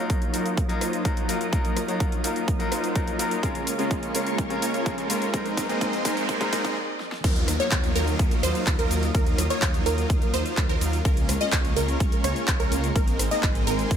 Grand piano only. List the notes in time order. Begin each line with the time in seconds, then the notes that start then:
Already playing: F#3 D#4
0.00 F4 A#4
0.33 F#3 D#4 F4 A#4
0.69 F#3 D#4 F4 A#4
1.04 F#3 D#4 F4 A#4
1.28 F#3 D#4 F4 A#4
1.52 F#3 D#4 F4 A#4
1.88 F#3 D#4 F4 A#4
2.23 F#3 D#4 F4 A#4
2.59 F#3 D#4 F4 A#4
2.95 F#3 D#4 F4 A#4
3.19 F#3 D#4 F4 A#4
3.42 C#3 G#3 C#4 F4 A#4
3.78 C#3 G#3 C#4 F4 A#4
4.14 C#3 G#3 C#4 F4 A#4
4.50 C#3 G#3 C#4 F4 A#4
4.85 C#3 G#3 C#4 F4 A#4
5.09 G#2 G#3 C#4 F4 A#4
5.33 G#2 G#3 C4 D#4 A#4
5.69 G#2 G#3 C4 D#4 A#4
6.04 G#2 G#3 C4 D#4 A#4
6.40 G#2 G#3 C4 D#4 A#4